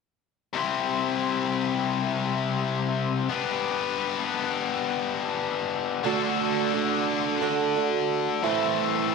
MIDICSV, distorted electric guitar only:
0, 0, Header, 1, 2, 480
1, 0, Start_track
1, 0, Tempo, 685714
1, 396, Time_signature, 4, 2, 24, 8
1, 6404, End_track
2, 0, Start_track
2, 0, Title_t, "Distorted electric guitar"
2, 0, Program_c, 0, 30
2, 375, Note_on_c, 0, 48, 74
2, 385, Note_on_c, 0, 55, 79
2, 389, Note_on_c, 0, 60, 78
2, 395, Note_on_c, 0, 64, 82
2, 398, Note_on_c, 0, 67, 72
2, 407, Note_on_c, 0, 72, 88
2, 2290, Note_off_c, 0, 48, 0
2, 2295, Note_off_c, 0, 55, 0
2, 2297, Note_off_c, 0, 60, 0
2, 2300, Note_off_c, 0, 64, 0
2, 2301, Note_off_c, 0, 67, 0
2, 2306, Note_off_c, 0, 72, 0
2, 2306, Note_on_c, 0, 59, 81
2, 2314, Note_on_c, 0, 62, 74
2, 2327, Note_on_c, 0, 67, 79
2, 2333, Note_on_c, 0, 71, 85
2, 4216, Note_off_c, 0, 59, 0
2, 4220, Note_off_c, 0, 62, 0
2, 4227, Note_off_c, 0, 67, 0
2, 4228, Note_on_c, 0, 50, 82
2, 4230, Note_off_c, 0, 71, 0
2, 4238, Note_on_c, 0, 62, 83
2, 4248, Note_on_c, 0, 66, 78
2, 4254, Note_on_c, 0, 69, 84
2, 5898, Note_off_c, 0, 50, 0
2, 5901, Note_on_c, 0, 45, 83
2, 5903, Note_off_c, 0, 62, 0
2, 5908, Note_off_c, 0, 66, 0
2, 5911, Note_off_c, 0, 69, 0
2, 5911, Note_on_c, 0, 52, 80
2, 5915, Note_on_c, 0, 57, 77
2, 5922, Note_on_c, 0, 60, 84
2, 5925, Note_on_c, 0, 64, 80
2, 5932, Note_on_c, 0, 69, 79
2, 6404, Note_off_c, 0, 45, 0
2, 6404, Note_off_c, 0, 52, 0
2, 6404, Note_off_c, 0, 57, 0
2, 6404, Note_off_c, 0, 60, 0
2, 6404, Note_off_c, 0, 64, 0
2, 6404, Note_off_c, 0, 69, 0
2, 6404, End_track
0, 0, End_of_file